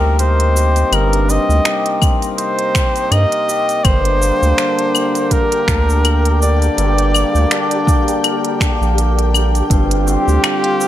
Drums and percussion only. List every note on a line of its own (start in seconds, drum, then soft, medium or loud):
0.19 closed hi-hat medium
0.19 shaker soft
0.40 closed hi-hat soft
0.56 shaker medium
0.76 closed hi-hat soft
0.76 shaker soft
0.93 closed hi-hat medium
0.93 claves medium
0.93 shaker soft
1.13 closed hi-hat soft
1.29 shaker medium
1.50 shaker soft
1.65 finger snap medium
1.65 closed hi-hat medium
1.65 shaker soft
1.86 closed hi-hat soft
2.02 kick loud
2.02 claves medium
2.02 shaker medium
2.22 closed hi-hat soft
2.22 shaker soft
2.38 closed hi-hat medium
2.38 shaker soft
2.59 closed hi-hat soft
2.75 finger snap medium
2.75 kick loud
2.75 shaker medium
2.96 closed hi-hat soft
2.96 shaker soft
3.12 closed hi-hat medium
3.12 claves medium
3.12 shaker soft
3.32 closed hi-hat soft
3.49 shaker medium
3.69 closed hi-hat soft
3.69 shaker soft
3.85 kick loud
3.85 closed hi-hat medium
3.85 claves medium
3.85 shaker soft
4.05 closed hi-hat soft
4.22 shaker medium
4.43 shaker soft
4.58 finger snap medium
4.58 closed hi-hat medium
4.58 shaker soft
4.79 closed hi-hat soft
4.95 claves medium
4.95 shaker medium
5.15 closed hi-hat soft
5.15 shaker soft
5.31 kick medium
5.31 closed hi-hat medium
5.31 shaker soft
5.52 closed hi-hat soft
5.68 finger snap medium
5.68 kick loud
5.68 shaker medium
5.90 shaker soft
6.05 closed hi-hat medium
6.05 claves medium
6.05 shaker soft
6.25 closed hi-hat soft
6.42 shaker medium
6.62 closed hi-hat soft
6.62 shaker soft
6.78 closed hi-hat medium
6.78 shaker soft
6.98 closed hi-hat soft
7.14 claves medium
7.14 shaker medium
7.35 shaker soft
7.51 finger snap medium
7.51 closed hi-hat medium
7.51 shaker soft
7.71 closed hi-hat soft
7.87 kick loud
7.87 shaker medium
8.08 closed hi-hat soft
8.08 shaker soft
8.24 closed hi-hat medium
8.24 claves medium
8.24 shaker soft
8.45 closed hi-hat soft
8.60 finger snap medium
8.60 kick loud
8.60 shaker medium
8.82 shaker soft
8.98 closed hi-hat medium
8.98 shaker soft
9.19 closed hi-hat soft
9.34 claves medium
9.34 shaker medium
9.55 closed hi-hat soft
9.55 shaker soft
9.70 kick loud
9.70 closed hi-hat medium
9.70 shaker soft
9.91 closed hi-hat soft
10.08 shaker medium
10.28 shaker soft
10.44 finger snap medium
10.44 closed hi-hat medium
10.44 claves medium
10.44 shaker soft
10.64 closed hi-hat soft
10.81 shaker medium